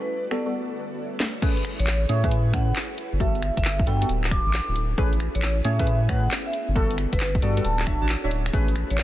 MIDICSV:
0, 0, Header, 1, 6, 480
1, 0, Start_track
1, 0, Key_signature, 3, "major"
1, 0, Tempo, 444444
1, 1537, Time_signature, 4, 2, 24, 8
1, 9753, End_track
2, 0, Start_track
2, 0, Title_t, "Vibraphone"
2, 0, Program_c, 0, 11
2, 18, Note_on_c, 0, 71, 85
2, 224, Note_off_c, 0, 71, 0
2, 339, Note_on_c, 0, 74, 84
2, 561, Note_off_c, 0, 74, 0
2, 1938, Note_on_c, 0, 73, 91
2, 2144, Note_off_c, 0, 73, 0
2, 2258, Note_on_c, 0, 76, 89
2, 2360, Note_off_c, 0, 76, 0
2, 2417, Note_on_c, 0, 76, 75
2, 2468, Note_off_c, 0, 76, 0
2, 2736, Note_on_c, 0, 78, 90
2, 2960, Note_off_c, 0, 78, 0
2, 3458, Note_on_c, 0, 76, 92
2, 3560, Note_off_c, 0, 76, 0
2, 3618, Note_on_c, 0, 76, 74
2, 3669, Note_off_c, 0, 76, 0
2, 3858, Note_on_c, 0, 76, 89
2, 4161, Note_off_c, 0, 76, 0
2, 4178, Note_on_c, 0, 79, 93
2, 4400, Note_off_c, 0, 79, 0
2, 4657, Note_on_c, 0, 86, 94
2, 5137, Note_off_c, 0, 86, 0
2, 5779, Note_on_c, 0, 73, 92
2, 5984, Note_off_c, 0, 73, 0
2, 6101, Note_on_c, 0, 76, 91
2, 6202, Note_off_c, 0, 76, 0
2, 6259, Note_on_c, 0, 76, 80
2, 6309, Note_off_c, 0, 76, 0
2, 6578, Note_on_c, 0, 78, 91
2, 6801, Note_off_c, 0, 78, 0
2, 6977, Note_on_c, 0, 76, 91
2, 7183, Note_off_c, 0, 76, 0
2, 7697, Note_on_c, 0, 71, 90
2, 7903, Note_off_c, 0, 71, 0
2, 8017, Note_on_c, 0, 74, 90
2, 8240, Note_off_c, 0, 74, 0
2, 8257, Note_on_c, 0, 81, 93
2, 8737, Note_off_c, 0, 81, 0
2, 9618, Note_on_c, 0, 73, 90
2, 9753, Note_off_c, 0, 73, 0
2, 9753, End_track
3, 0, Start_track
3, 0, Title_t, "Ambient pad"
3, 0, Program_c, 1, 92
3, 0, Note_on_c, 1, 55, 75
3, 0, Note_on_c, 1, 66, 72
3, 0, Note_on_c, 1, 69, 69
3, 0, Note_on_c, 1, 71, 69
3, 0, Note_on_c, 1, 74, 83
3, 567, Note_off_c, 1, 55, 0
3, 567, Note_off_c, 1, 71, 0
3, 567, Note_off_c, 1, 74, 0
3, 576, Note_on_c, 1, 73, 68
3, 577, Note_on_c, 1, 50, 74
3, 577, Note_on_c, 1, 76, 81
3, 1517, Note_off_c, 1, 66, 0
3, 1518, Note_off_c, 1, 69, 0
3, 1522, Note_off_c, 1, 73, 0
3, 1527, Note_off_c, 1, 50, 0
3, 1527, Note_off_c, 1, 76, 0
3, 1535, Note_on_c, 1, 73, 87
3, 1536, Note_on_c, 1, 64, 83
3, 1536, Note_on_c, 1, 68, 74
3, 1536, Note_on_c, 1, 71, 77
3, 3437, Note_off_c, 1, 64, 0
3, 3437, Note_off_c, 1, 73, 0
3, 3438, Note_off_c, 1, 68, 0
3, 3458, Note_on_c, 1, 62, 75
3, 3458, Note_on_c, 1, 66, 71
3, 3459, Note_on_c, 1, 69, 69
3, 4388, Note_off_c, 1, 71, 0
3, 4406, Note_off_c, 1, 69, 0
3, 4408, Note_off_c, 1, 62, 0
3, 4408, Note_off_c, 1, 66, 0
3, 4419, Note_on_c, 1, 69, 86
3, 4420, Note_on_c, 1, 61, 80
3, 4420, Note_on_c, 1, 64, 74
3, 4420, Note_on_c, 1, 66, 68
3, 5368, Note_off_c, 1, 69, 0
3, 5369, Note_off_c, 1, 66, 0
3, 5375, Note_on_c, 1, 59, 82
3, 5376, Note_on_c, 1, 68, 91
3, 7270, Note_off_c, 1, 61, 0
3, 7270, Note_off_c, 1, 64, 0
3, 7277, Note_off_c, 1, 68, 0
3, 7296, Note_on_c, 1, 62, 73
3, 7296, Note_on_c, 1, 66, 77
3, 7296, Note_on_c, 1, 69, 90
3, 8227, Note_off_c, 1, 59, 0
3, 8247, Note_off_c, 1, 62, 0
3, 8255, Note_on_c, 1, 61, 80
3, 8255, Note_on_c, 1, 64, 72
3, 9198, Note_off_c, 1, 66, 0
3, 9198, Note_off_c, 1, 69, 0
3, 9218, Note_on_c, 1, 59, 80
3, 9218, Note_on_c, 1, 68, 89
3, 9753, Note_off_c, 1, 59, 0
3, 9753, Note_off_c, 1, 61, 0
3, 9753, Note_off_c, 1, 64, 0
3, 9753, Note_off_c, 1, 68, 0
3, 9753, End_track
4, 0, Start_track
4, 0, Title_t, "Synth stab"
4, 0, Program_c, 2, 62
4, 335, Note_on_c, 2, 55, 81
4, 335, Note_on_c, 2, 59, 75
4, 335, Note_on_c, 2, 66, 75
4, 335, Note_on_c, 2, 69, 92
4, 472, Note_off_c, 2, 69, 0
4, 473, Note_off_c, 2, 55, 0
4, 473, Note_off_c, 2, 59, 0
4, 473, Note_off_c, 2, 66, 0
4, 496, Note_on_c, 2, 55, 73
4, 496, Note_on_c, 2, 59, 68
4, 496, Note_on_c, 2, 66, 67
4, 496, Note_on_c, 2, 69, 82
4, 567, Note_off_c, 2, 55, 0
4, 567, Note_off_c, 2, 59, 0
4, 567, Note_off_c, 2, 66, 0
4, 567, Note_off_c, 2, 69, 0
4, 1536, Note_on_c, 2, 61, 91
4, 1537, Note_on_c, 2, 57, 99
4, 1537, Note_on_c, 2, 68, 92
4, 1537, Note_on_c, 2, 71, 107
4, 1691, Note_off_c, 2, 57, 0
4, 1691, Note_off_c, 2, 61, 0
4, 1691, Note_off_c, 2, 68, 0
4, 1691, Note_off_c, 2, 71, 0
4, 2258, Note_on_c, 2, 57, 93
4, 2258, Note_on_c, 2, 61, 85
4, 2258, Note_on_c, 2, 68, 88
4, 2258, Note_on_c, 2, 73, 104
4, 2394, Note_off_c, 2, 57, 0
4, 2394, Note_off_c, 2, 61, 0
4, 2394, Note_off_c, 2, 68, 0
4, 2394, Note_off_c, 2, 73, 0
4, 2418, Note_on_c, 2, 57, 103
4, 2418, Note_on_c, 2, 61, 93
4, 2419, Note_on_c, 2, 68, 91
4, 2419, Note_on_c, 2, 71, 111
4, 2494, Note_off_c, 2, 57, 0
4, 2494, Note_off_c, 2, 61, 0
4, 2494, Note_off_c, 2, 68, 0
4, 2494, Note_off_c, 2, 71, 0
4, 2737, Note_on_c, 2, 57, 80
4, 2737, Note_on_c, 2, 61, 75
4, 2737, Note_on_c, 2, 68, 73
4, 2737, Note_on_c, 2, 71, 90
4, 2891, Note_off_c, 2, 57, 0
4, 2891, Note_off_c, 2, 61, 0
4, 2891, Note_off_c, 2, 68, 0
4, 2891, Note_off_c, 2, 71, 0
4, 3457, Note_on_c, 2, 59, 92
4, 3457, Note_on_c, 2, 66, 92
4, 3457, Note_on_c, 2, 69, 111
4, 3458, Note_on_c, 2, 55, 99
4, 3660, Note_off_c, 2, 55, 0
4, 3660, Note_off_c, 2, 59, 0
4, 3660, Note_off_c, 2, 66, 0
4, 3660, Note_off_c, 2, 69, 0
4, 4177, Note_on_c, 2, 59, 78
4, 4177, Note_on_c, 2, 66, 76
4, 4177, Note_on_c, 2, 69, 93
4, 4178, Note_on_c, 2, 55, 85
4, 4313, Note_off_c, 2, 66, 0
4, 4314, Note_off_c, 2, 55, 0
4, 4314, Note_off_c, 2, 59, 0
4, 4314, Note_off_c, 2, 69, 0
4, 4338, Note_on_c, 2, 55, 75
4, 4338, Note_on_c, 2, 59, 72
4, 4338, Note_on_c, 2, 66, 72
4, 4338, Note_on_c, 2, 69, 84
4, 4408, Note_off_c, 2, 55, 0
4, 4408, Note_off_c, 2, 59, 0
4, 4408, Note_off_c, 2, 66, 0
4, 4408, Note_off_c, 2, 69, 0
4, 5377, Note_on_c, 2, 57, 99
4, 5377, Note_on_c, 2, 61, 93
4, 5377, Note_on_c, 2, 68, 92
4, 5377, Note_on_c, 2, 71, 110
4, 5531, Note_off_c, 2, 57, 0
4, 5531, Note_off_c, 2, 61, 0
4, 5531, Note_off_c, 2, 68, 0
4, 5531, Note_off_c, 2, 71, 0
4, 6097, Note_on_c, 2, 57, 95
4, 6097, Note_on_c, 2, 61, 86
4, 6097, Note_on_c, 2, 68, 88
4, 6097, Note_on_c, 2, 73, 104
4, 6233, Note_off_c, 2, 57, 0
4, 6233, Note_off_c, 2, 61, 0
4, 6233, Note_off_c, 2, 68, 0
4, 6233, Note_off_c, 2, 73, 0
4, 6257, Note_on_c, 2, 57, 103
4, 6257, Note_on_c, 2, 61, 91
4, 6257, Note_on_c, 2, 68, 91
4, 6257, Note_on_c, 2, 71, 109
4, 6333, Note_off_c, 2, 57, 0
4, 6334, Note_off_c, 2, 61, 0
4, 6334, Note_off_c, 2, 68, 0
4, 6334, Note_off_c, 2, 71, 0
4, 6577, Note_on_c, 2, 57, 82
4, 6577, Note_on_c, 2, 61, 73
4, 6577, Note_on_c, 2, 68, 72
4, 6577, Note_on_c, 2, 71, 90
4, 6731, Note_off_c, 2, 57, 0
4, 6731, Note_off_c, 2, 61, 0
4, 6731, Note_off_c, 2, 68, 0
4, 6731, Note_off_c, 2, 71, 0
4, 7296, Note_on_c, 2, 59, 92
4, 7296, Note_on_c, 2, 69, 110
4, 7297, Note_on_c, 2, 55, 98
4, 7297, Note_on_c, 2, 66, 92
4, 7500, Note_off_c, 2, 55, 0
4, 7500, Note_off_c, 2, 59, 0
4, 7500, Note_off_c, 2, 66, 0
4, 7500, Note_off_c, 2, 69, 0
4, 8017, Note_on_c, 2, 55, 84
4, 8017, Note_on_c, 2, 59, 78
4, 8017, Note_on_c, 2, 66, 79
4, 8017, Note_on_c, 2, 69, 96
4, 8153, Note_off_c, 2, 55, 0
4, 8153, Note_off_c, 2, 59, 0
4, 8153, Note_off_c, 2, 66, 0
4, 8153, Note_off_c, 2, 69, 0
4, 8177, Note_on_c, 2, 55, 77
4, 8177, Note_on_c, 2, 59, 71
4, 8177, Note_on_c, 2, 66, 71
4, 8177, Note_on_c, 2, 69, 86
4, 8247, Note_off_c, 2, 55, 0
4, 8247, Note_off_c, 2, 59, 0
4, 8247, Note_off_c, 2, 66, 0
4, 8247, Note_off_c, 2, 69, 0
4, 8497, Note_on_c, 2, 62, 81
4, 8497, Note_on_c, 2, 66, 77
4, 8497, Note_on_c, 2, 73, 77
4, 8497, Note_on_c, 2, 76, 91
4, 8633, Note_off_c, 2, 62, 0
4, 8633, Note_off_c, 2, 66, 0
4, 8633, Note_off_c, 2, 73, 0
4, 8633, Note_off_c, 2, 76, 0
4, 8657, Note_on_c, 2, 62, 83
4, 8657, Note_on_c, 2, 66, 74
4, 8657, Note_on_c, 2, 73, 73
4, 8657, Note_on_c, 2, 81, 88
4, 8734, Note_off_c, 2, 62, 0
4, 8734, Note_off_c, 2, 66, 0
4, 8734, Note_off_c, 2, 73, 0
4, 8734, Note_off_c, 2, 81, 0
4, 8896, Note_on_c, 2, 66, 70
4, 8897, Note_on_c, 2, 62, 76
4, 8897, Note_on_c, 2, 73, 68
4, 8897, Note_on_c, 2, 76, 84
4, 8973, Note_off_c, 2, 62, 0
4, 8973, Note_off_c, 2, 66, 0
4, 8974, Note_off_c, 2, 73, 0
4, 8974, Note_off_c, 2, 76, 0
4, 9216, Note_on_c, 2, 61, 92
4, 9217, Note_on_c, 2, 57, 103
4, 9217, Note_on_c, 2, 68, 95
4, 9217, Note_on_c, 2, 71, 112
4, 9371, Note_off_c, 2, 57, 0
4, 9371, Note_off_c, 2, 61, 0
4, 9371, Note_off_c, 2, 68, 0
4, 9371, Note_off_c, 2, 71, 0
4, 9753, End_track
5, 0, Start_track
5, 0, Title_t, "Sub bass"
5, 0, Program_c, 3, 38
5, 1936, Note_on_c, 3, 33, 101
5, 2223, Note_off_c, 3, 33, 0
5, 2257, Note_on_c, 3, 45, 89
5, 2943, Note_off_c, 3, 45, 0
5, 3377, Note_on_c, 3, 31, 91
5, 3789, Note_off_c, 3, 31, 0
5, 3858, Note_on_c, 3, 31, 100
5, 4144, Note_off_c, 3, 31, 0
5, 4176, Note_on_c, 3, 43, 91
5, 4375, Note_off_c, 3, 43, 0
5, 4416, Note_on_c, 3, 26, 97
5, 4749, Note_off_c, 3, 26, 0
5, 4816, Note_on_c, 3, 33, 101
5, 4972, Note_off_c, 3, 33, 0
5, 5057, Note_on_c, 3, 26, 87
5, 5343, Note_off_c, 3, 26, 0
5, 5378, Note_on_c, 3, 33, 84
5, 5710, Note_off_c, 3, 33, 0
5, 5777, Note_on_c, 3, 33, 102
5, 6063, Note_off_c, 3, 33, 0
5, 6095, Note_on_c, 3, 45, 91
5, 6782, Note_off_c, 3, 45, 0
5, 7218, Note_on_c, 3, 31, 91
5, 7630, Note_off_c, 3, 31, 0
5, 7697, Note_on_c, 3, 31, 99
5, 7983, Note_off_c, 3, 31, 0
5, 8016, Note_on_c, 3, 43, 92
5, 8214, Note_off_c, 3, 43, 0
5, 8257, Note_on_c, 3, 26, 98
5, 8589, Note_off_c, 3, 26, 0
5, 8656, Note_on_c, 3, 33, 97
5, 8812, Note_off_c, 3, 33, 0
5, 8897, Note_on_c, 3, 26, 89
5, 9183, Note_off_c, 3, 26, 0
5, 9217, Note_on_c, 3, 33, 85
5, 9549, Note_off_c, 3, 33, 0
5, 9616, Note_on_c, 3, 33, 102
5, 9753, Note_off_c, 3, 33, 0
5, 9753, End_track
6, 0, Start_track
6, 0, Title_t, "Drums"
6, 338, Note_on_c, 9, 26, 54
6, 446, Note_off_c, 9, 26, 0
6, 1298, Note_on_c, 9, 38, 90
6, 1406, Note_off_c, 9, 38, 0
6, 1537, Note_on_c, 9, 36, 123
6, 1538, Note_on_c, 9, 42, 66
6, 1538, Note_on_c, 9, 49, 108
6, 1645, Note_off_c, 9, 36, 0
6, 1646, Note_off_c, 9, 42, 0
6, 1646, Note_off_c, 9, 49, 0
6, 1698, Note_on_c, 9, 42, 38
6, 1779, Note_off_c, 9, 42, 0
6, 1779, Note_on_c, 9, 26, 33
6, 1779, Note_on_c, 9, 42, 112
6, 1887, Note_off_c, 9, 26, 0
6, 1887, Note_off_c, 9, 42, 0
6, 1939, Note_on_c, 9, 42, 66
6, 2019, Note_on_c, 9, 39, 120
6, 2047, Note_off_c, 9, 42, 0
6, 2127, Note_off_c, 9, 39, 0
6, 2259, Note_on_c, 9, 42, 113
6, 2367, Note_off_c, 9, 42, 0
6, 2418, Note_on_c, 9, 36, 105
6, 2419, Note_on_c, 9, 42, 64
6, 2499, Note_off_c, 9, 42, 0
6, 2499, Note_on_c, 9, 42, 66
6, 2526, Note_off_c, 9, 36, 0
6, 2607, Note_off_c, 9, 42, 0
6, 2738, Note_on_c, 9, 36, 105
6, 2739, Note_on_c, 9, 26, 74
6, 2739, Note_on_c, 9, 42, 113
6, 2846, Note_off_c, 9, 36, 0
6, 2847, Note_off_c, 9, 26, 0
6, 2847, Note_off_c, 9, 42, 0
6, 2979, Note_on_c, 9, 39, 119
6, 3087, Note_off_c, 9, 39, 0
6, 3218, Note_on_c, 9, 42, 110
6, 3326, Note_off_c, 9, 42, 0
6, 3458, Note_on_c, 9, 36, 125
6, 3459, Note_on_c, 9, 42, 65
6, 3566, Note_off_c, 9, 36, 0
6, 3567, Note_off_c, 9, 42, 0
6, 3619, Note_on_c, 9, 42, 36
6, 3699, Note_off_c, 9, 42, 0
6, 3699, Note_on_c, 9, 26, 35
6, 3699, Note_on_c, 9, 42, 113
6, 3807, Note_off_c, 9, 26, 0
6, 3807, Note_off_c, 9, 42, 0
6, 3858, Note_on_c, 9, 36, 66
6, 3860, Note_on_c, 9, 42, 64
6, 3939, Note_on_c, 9, 39, 126
6, 3966, Note_off_c, 9, 36, 0
6, 3968, Note_off_c, 9, 42, 0
6, 4047, Note_off_c, 9, 39, 0
6, 4098, Note_on_c, 9, 36, 112
6, 4179, Note_on_c, 9, 42, 111
6, 4206, Note_off_c, 9, 36, 0
6, 4287, Note_off_c, 9, 42, 0
6, 4340, Note_on_c, 9, 42, 65
6, 4419, Note_off_c, 9, 42, 0
6, 4419, Note_on_c, 9, 42, 65
6, 4527, Note_off_c, 9, 42, 0
6, 4580, Note_on_c, 9, 39, 64
6, 4658, Note_on_c, 9, 36, 107
6, 4659, Note_on_c, 9, 26, 72
6, 4659, Note_on_c, 9, 42, 110
6, 4688, Note_off_c, 9, 39, 0
6, 4766, Note_off_c, 9, 36, 0
6, 4767, Note_off_c, 9, 26, 0
6, 4767, Note_off_c, 9, 42, 0
6, 4898, Note_on_c, 9, 39, 126
6, 5006, Note_off_c, 9, 39, 0
6, 5138, Note_on_c, 9, 42, 107
6, 5246, Note_off_c, 9, 42, 0
6, 5378, Note_on_c, 9, 36, 127
6, 5379, Note_on_c, 9, 42, 66
6, 5486, Note_off_c, 9, 36, 0
6, 5487, Note_off_c, 9, 42, 0
6, 5538, Note_on_c, 9, 42, 35
6, 5618, Note_off_c, 9, 42, 0
6, 5618, Note_on_c, 9, 26, 34
6, 5618, Note_on_c, 9, 42, 106
6, 5726, Note_off_c, 9, 26, 0
6, 5726, Note_off_c, 9, 42, 0
6, 5778, Note_on_c, 9, 42, 64
6, 5857, Note_on_c, 9, 39, 127
6, 5886, Note_off_c, 9, 42, 0
6, 5965, Note_off_c, 9, 39, 0
6, 6097, Note_on_c, 9, 42, 106
6, 6205, Note_off_c, 9, 42, 0
6, 6258, Note_on_c, 9, 36, 109
6, 6258, Note_on_c, 9, 42, 65
6, 6338, Note_off_c, 9, 42, 0
6, 6338, Note_on_c, 9, 42, 64
6, 6366, Note_off_c, 9, 36, 0
6, 6446, Note_off_c, 9, 42, 0
6, 6577, Note_on_c, 9, 36, 111
6, 6578, Note_on_c, 9, 26, 70
6, 6578, Note_on_c, 9, 42, 105
6, 6685, Note_off_c, 9, 36, 0
6, 6686, Note_off_c, 9, 26, 0
6, 6686, Note_off_c, 9, 42, 0
6, 6818, Note_on_c, 9, 39, 125
6, 6926, Note_off_c, 9, 39, 0
6, 7057, Note_on_c, 9, 42, 106
6, 7165, Note_off_c, 9, 42, 0
6, 7297, Note_on_c, 9, 36, 126
6, 7298, Note_on_c, 9, 42, 65
6, 7405, Note_off_c, 9, 36, 0
6, 7406, Note_off_c, 9, 42, 0
6, 7459, Note_on_c, 9, 42, 36
6, 7538, Note_off_c, 9, 42, 0
6, 7538, Note_on_c, 9, 26, 32
6, 7538, Note_on_c, 9, 42, 106
6, 7646, Note_off_c, 9, 26, 0
6, 7646, Note_off_c, 9, 42, 0
6, 7698, Note_on_c, 9, 36, 65
6, 7698, Note_on_c, 9, 42, 64
6, 7778, Note_on_c, 9, 39, 123
6, 7806, Note_off_c, 9, 36, 0
6, 7806, Note_off_c, 9, 42, 0
6, 7886, Note_off_c, 9, 39, 0
6, 7938, Note_on_c, 9, 36, 106
6, 8017, Note_on_c, 9, 42, 103
6, 8046, Note_off_c, 9, 36, 0
6, 8125, Note_off_c, 9, 42, 0
6, 8177, Note_on_c, 9, 42, 65
6, 8257, Note_off_c, 9, 42, 0
6, 8257, Note_on_c, 9, 42, 67
6, 8365, Note_off_c, 9, 42, 0
6, 8418, Note_on_c, 9, 39, 64
6, 8497, Note_on_c, 9, 26, 68
6, 8497, Note_on_c, 9, 36, 110
6, 8497, Note_on_c, 9, 42, 101
6, 8526, Note_off_c, 9, 39, 0
6, 8605, Note_off_c, 9, 26, 0
6, 8605, Note_off_c, 9, 36, 0
6, 8605, Note_off_c, 9, 42, 0
6, 8737, Note_on_c, 9, 39, 121
6, 8845, Note_off_c, 9, 39, 0
6, 8977, Note_on_c, 9, 42, 102
6, 9085, Note_off_c, 9, 42, 0
6, 9138, Note_on_c, 9, 26, 54
6, 9217, Note_on_c, 9, 36, 123
6, 9217, Note_on_c, 9, 42, 69
6, 9246, Note_off_c, 9, 26, 0
6, 9325, Note_off_c, 9, 36, 0
6, 9325, Note_off_c, 9, 42, 0
6, 9378, Note_on_c, 9, 42, 38
6, 9457, Note_off_c, 9, 42, 0
6, 9457, Note_on_c, 9, 26, 32
6, 9457, Note_on_c, 9, 42, 109
6, 9565, Note_off_c, 9, 26, 0
6, 9565, Note_off_c, 9, 42, 0
6, 9617, Note_on_c, 9, 42, 67
6, 9697, Note_on_c, 9, 39, 120
6, 9725, Note_off_c, 9, 42, 0
6, 9753, Note_off_c, 9, 39, 0
6, 9753, End_track
0, 0, End_of_file